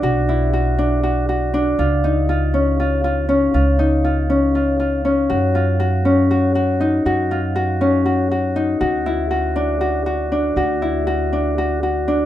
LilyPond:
<<
  \new Staff \with { instrumentName = "Harp" } { \time 7/8 \key ges \lydian \tempo 4 = 120 fis'8 fes'8 fis'8 d'8 fis'8 fis'8 d'8 | f'8 ees'8 f'8 des'8 f'8 f'8 des'8 | f'8 ees'8 f'8 des'8 f'8 f'8 des'8 | ges'8 f'8 ges'8 des'8 ges'8 ges'8 ees'8 |
ges'8 f'8 ges'8 des'8 ges'8 ges'8 ees'8 | fis'8 fes'8 fis'8 d'8 fis'8 fis'8 d'8 | fis'8 fes'8 fis'8 d'8 fis'8 fis'8 d'8 | }
  \new Staff \with { instrumentName = "Upright bass" } { \clef bass \time 7/8 \key ges \lydian b,,2.~ b,,8 | des,2.~ des,8 | des,2.~ des,8 | ges,2.~ ges,8 |
ges,2.~ ges,8 | d,2.~ d,8 | d,2.~ d,8 | }
>>